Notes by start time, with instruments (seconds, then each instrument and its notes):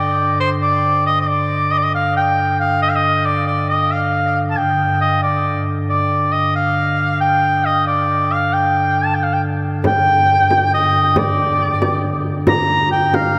Already playing: pipe organ G2 D3, shawm D5
0.40 shawm C5
0.62 shawm D5
1.06 shawm D#5
1.21 shawm D#5
1.29 shawm D5
1.71 shawm D#5
1.78 shawm D5
1.83 shawm D#5
1.95 shawm F5
2.17 shawm G5
2.60 shawm F5
2.82 shawm D#5
2.89 shawm F5
2.95 shawm D#5
3.26 shawm D5
3.47 shawm D5
3.69 shawm D#5
3.91 shawm F5
4.50 shawm A5
4.57 pipe organ G2 D3, shawm G5
5.01 shawm D#5
5.22 shawm D5
5.89 shawm D5
6.32 shawm D#5
6.56 shawm F5
7.21 shawm G5
7.65 shawm D#5
7.87 shawm D5
8.32 shawm F5
8.53 shawm G5
9.05 shawm A5
9.15 shawm G5
9.23 shawm F5
9.33 shawm G5
9.84 pipe organ G2 D3, shawm G5, frame drum
10.06 frame drum
10.51 frame drum
10.72 shawm D#5, frame drum
11.16 shawm D5, frame drum
11.38 frame drum
11.82 frame drum
12.04 frame drum
12.47 shawm A#5, frame drum
12.70 frame drum
12.91 shawm G5
13.14 shawm F5, frame drum
13.36 frame drum